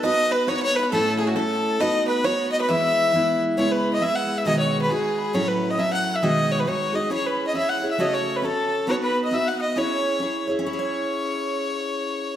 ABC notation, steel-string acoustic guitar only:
X:1
M:2/4
L:1/8
Q:"Swing" 1/4=136
K:E
V:1 name="Steel-string acoustic guitar"
[B,DFB]2 [B,DFB]2 | [A,,A,CEA]2 [A,CEA]2 | [B,DFB]2 [B,DFB]2 | [E,G,B,E]2 [E,G,B,E]2 |
[K:C#m] [C,G,B,EG]2 [G,B,EG]2 | [B,,D,G,DFG]2 [G,DFG]2 | [A,,F,CEA]2 [F,CEA]2 | [B,,D,G,DFG]2 [G,DFG] [G,DFG] |
[CEGc]2 [CEGc] [EGc] | [C,A,CFAc]2 [CFAc]2 | [B,DFB]2 [B,DFB]2 | [CEGc]2 [CEGc] [EGc] |
[CEGc]4- | [CEGc]4 |]